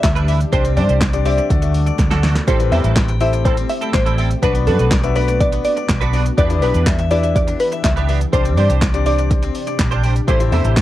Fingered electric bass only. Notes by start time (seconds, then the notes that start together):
0.04 D2
0.53 C2
0.77 G2
0.89 C2
1.50 D2
1.99 D2
2.48 A1
2.72 E2
2.84 A1
3.94 A1
4.43 B1
4.67 F#2
4.79 B1
5.89 B1
6.38 E2
6.62 B1
6.74 E2
7.84 C#2
8.33 C2
8.57 G2
8.70 C2
9.79 A#1
10.28 A1
10.52 E2
10.65 A1